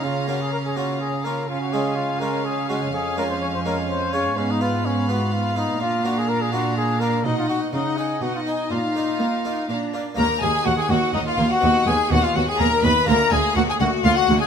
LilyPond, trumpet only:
\new Staff \with { instrumentName = "Trumpet" } { \time 3/4 \key des \major \tempo 4 = 124 f'8 ges'16 aes'16 bes'16 aes'16 ges'8 aes'8 bes'8 | f'16 ges'16 aes'8 f'8 bes'8 aes'8 ges'8 | aes'8 bes'16 c''16 des''16 c''16 bes'8 c''8 des''8 | \key ees \minor des'16 ees'16 f'8 des'8 ges'8 f'8 ees'8 |
f'8 ges'16 aes'16 bes'16 aes'16 ges'8 aes'8 bes'8 | dis'16 f'16 fis'8 dis'8 aes'8 fis'16 f'16 dis'8 | f'2 r4 | bes'8 aes'8 ges'16 aes'16 ges'8 ees'16 f'8 ges'16~ |
ges'8 aes'8 fis'16 f'16 fis'16 aes'16 bes'8 b'8 | bes'8 aes'8 ges'16 aes'16 ges'8 f'16 ges'8 aes'16 | }